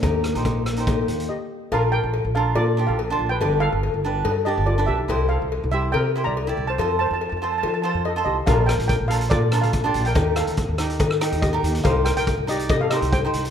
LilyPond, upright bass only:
\new Staff \with { instrumentName = "Upright bass" } { \clef bass \time 4/4 \key ees \mixolydian \tempo 4 = 142 ees,8. bes,,4.~ bes,,16 ees,8 r4 | \key bes \major bes,,8. bes,,8 bes,,8. bes,8. bes,,8. bes,,8 | g,,8. g,,8 g,,8. g,8. g,,8. b,,8 | c,8. c,8 c,8. c8. c,8. c,8 |
f,8. f,8 f,8. f8. f,8. c,8 | bes,,8. bes,,8 bes,,8. bes,8. bes,,8. bes,,8 | ees,8. ees,8 ees,8. ees8. ees,8. ees,8 | c,8. c,8 c,8. c8. c,8. c,8 | }